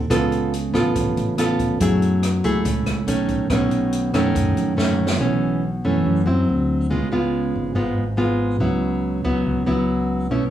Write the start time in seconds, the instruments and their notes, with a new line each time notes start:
0.10 fingered electric bass C#2, nylon-string guitar C#3 B3 F4 A4, kick, cross-stick, closed hi-hat
0.32 closed hi-hat
0.53 closed hi-hat
0.74 fingered electric bass A1, nylon-string guitar B3 F4 A4, cross-stick, closed hi-hat
0.95 fingered electric bass A1, nylon-string guitar C#3, kick, closed hi-hat
1.16 fingered electric bass A1, closed hi-hat
1.38 nylon-string guitar B3 F4 A4, cross-stick, closed hi-hat
1.59 kick, closed hi-hat
1.80 fingered electric bass F#2, nylon-string guitar F#3 A3 E4 G#4, kick, closed hi-hat
2.02 closed hi-hat
2.23 cross-stick, closed hi-hat
2.44 fingered electric bass C#2, nylon-string guitar A3 E4 G#4, closed hi-hat
2.65 fingered electric bass C#2, nylon-string guitar C#3, kick, closed hi-hat
2.86 fingered electric bass C#2, cross-stick, closed hi-hat
3.07 fingered electric bass B1, nylon-string guitar D#3 A3 C#4, closed hi-hat
3.28 kick, closed hi-hat
3.50 fingered electric bass B1, nylon-string guitar B2 D#3 A3 C#4, kick, cross-stick, closed hi-hat
3.71 closed hi-hat
3.92 closed hi-hat
4.14 fingered electric bass F#2, nylon-string guitar D#3 A3 C#4, cross-stick, closed hi-hat
4.35 nylon-string guitar F#2, fingered electric bass F#2, kick, closed hi-hat
4.57 fingered electric bass F#2, closed hi-hat
4.77 nylon-string guitar D#3 A3 C#4, snare
4.92 mid tom
5.07 snare
5.19 fingered electric bass B1, nylon-string guitar B2 E3 A3 C#4
5.85 fingered electric bass F#2, nylon-string guitar E3 A3 C#4
6.06 nylon-string guitar F#2, fingered electric bass F#2
6.26 fingered electric bass F#2, nylon-string guitar F#3 C4 E4
6.49 fingered electric bass D2
6.90 fingered electric bass C#2, nylon-string guitar C#3 G#3 B3 F4
7.12 nylon-string guitar G#3 B3 F4
7.56 fingered electric bass G#1
7.75 fingered electric bass G#1, nylon-string guitar G#2 G#3 B3 F4
7.97 fingered electric bass G#1
8.17 nylon-string guitar G#3 B3 F4
8.60 fingered electric bass C#2, nylon-string guitar C#3 F#3 B3 E4
9.24 fingered electric bass C#2, nylon-string guitar F#3 B3 E4
9.46 fingered electric bass C#2, nylon-string guitar C#3
9.66 fingered electric bass C#2, nylon-string guitar F#3 B3 E4
10.31 fingered electric bass B1, nylon-string guitar B2 A3 C#4 E4